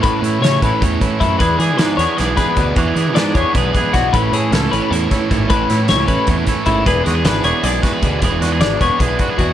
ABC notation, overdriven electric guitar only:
X:1
M:7/8
L:1/8
Q:1/4=154
K:A
V:1 name="Overdriven electric guitar"
[A,CEAc] [EAc] [CEAc] [EAc] [A,CEAc] [EAc] [CEAc] | [E,G,B,EGd] [B,EGd] [B,EGd] [B,EGd] [E,G,B,EGd] [B,EGd] [B,EGd] | [E,G,B,EGd] [B,EGd] [B,EGd] [B,EGd] [E,G,B,EGd] [B,EGd] [B,EGd] | [A,CEAc] [EAc] [CEAc] [EAc] [A,CEAc] [EAc] [CEAc] |
[A,CEAc] [EAc] [CEAc] [EAc] [A,CEAc] [EAc] [CEAc] | [E,G,B,EGd] [B,EGd] [B,EGd] [B,EGd] [E,G,B,EGd] [B,EGd] [B,EGd] | [E,G,B,EGd] [B,EGd] [B,EGd] [B,EGd] [E,G,B,EGd] [B,EGd] [B,EGd] |]